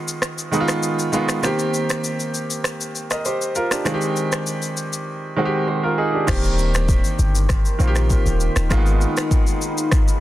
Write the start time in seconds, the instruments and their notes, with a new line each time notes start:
Already playing: grand piano D#3 G#3 B3 F4
0.08 shaker
0.22 finger snap, cross-stick, shaker
0.38 shaker
0.51 grand piano D#3 G#3 B3 D#4, shaker
0.60 grand piano F4
0.68 finger snap, cross-stick, shaker
0.83 shaker
0.99 shaker
1.12 grand piano D#3 G#3 B3 F4, shaker
1.29 finger snap, cross-stick, shaker
1.42 grand piano D#3 A#3 C4 G4, finger snap, cross-stick, shaker
1.59 shaker
1.74 shaker
1.90 finger snap, cross-stick, shaker
2.04 shaker
2.20 shaker
2.34 shaker
2.51 shaker
2.64 finger snap, cross-stick, shaker
2.81 shaker
2.95 shaker
3.11 grand piano A#4 D#5, finger snap, cross-stick, shaker
3.25 grand piano G4 C5, shaker
3.42 shaker
3.55 grand piano F4 A#4, shaker
3.71 grand piano D4 G4, finger snap, cross-stick, shaker
3.85 grand piano D#3 G#3 C4 F4, finger snap, cross-stick, shaker
3.94 grand piano G4
4.01 shaker
4.16 shaker
4.32 finger snap, cross-stick, shaker
4.47 shaker
4.62 shaker
4.77 shaker
4.93 shaker
5.36 grand piano D#3 G#3 C4 F#4
5.45 grand piano G4
5.68 grand piano G4 C5
5.83 grand piano F4 A#4
5.98 grand piano D#4 G#4
6.14 grand piano D4 G4
6.27 808-style bass D#1, grand piano D#3 A#3 C4 G4, ambient pad D#4 A#4 G5 C6, finger snap, kick, cross-stick, crash, shaker
6.44 shaker
6.59 shaker
6.75 finger snap, cross-stick, shaker
6.89 kick, shaker
7.04 shaker
7.19 808-style bass G1, shaker
7.35 shaker
7.49 finger snap, kick, cross-stick, shaker
7.65 shaker
7.79 808-style bass A#1, grand piano D#3 A#3 C4 F4, shaker
7.88 grand piano G4
7.96 finger snap, cross-stick, shaker
8.10 kick, shaker
8.26 808-style bass D#1, shaker
8.40 shaker
8.56 808-style bass D#1, finger snap, cross-stick, shaker
8.69 808-style bass G#1, grand piano D#3 G#3 A#3 F4, ambient pad G#4 F5 B5, finger snap, kick, cross-stick, shaker
8.78 grand piano B3
8.86 shaker
9.01 shaker
9.17 finger snap, cross-stick, shaker
9.31 kick, shaker
9.47 shaker
9.62 shaker
9.78 shaker
9.92 finger snap, kick, cross-stick, shaker
10.08 shaker